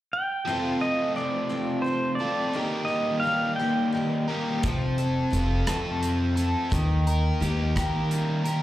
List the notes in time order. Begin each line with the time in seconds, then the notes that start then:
0.13 G5
0.47 F2 C3 F3 A3 C4 F4 A4
0.81 A3 C4 F4 D#5
0.85 F3
1.15 F3 A3 C4 D5
1.20 F4
1.49 F2 C3 F3 A3 C4 F4
1.82 F3 C5
1.86 A3 C4 F4
2.15 F4 D5
2.20 F3 A3 C4 A4
2.53 D#3 G3 A#3 D#4 G4
2.59 A#4
2.85 G4 D#5
2.90 A#3 D#4
3.20 D#3 F5
3.24 A#3 D#4 G4
3.56 G4 G5
3.60 D#3 A#3 D#4
3.92 D#3 A#3 D#4
3.97 G4
4.28 D#3 G3 D#4 G4 A#4
4.33 A#3
4.63 F1 F2 C3 F3 A3 C4 A4, kick, closed hi-hat
4.98 A4, closed hi-hat
5.30 F1 F3 A3 C4 F4 A4, closed hi-hat
5.67 F2 C3 F3 A3 C4 A4, cross-stick, closed hi-hat
6.01 C4, closed hi-hat
6.37 F3 A3 C4 A4, closed hi-hat
6.70 D#2 D#3 A#3 D#4 G4, kick, closed hi-hat
7.07 A#4, closed hi-hat
7.40 D#2 D#3 A#3 D#4 G4, closed hi-hat
7.76 D#3 A#3 D#4 G4 A#4, kick, cross-stick, closed hi-hat
8.11 G3, closed hi-hat
8.44 A#3 D#4 G4 A#4, closed hi-hat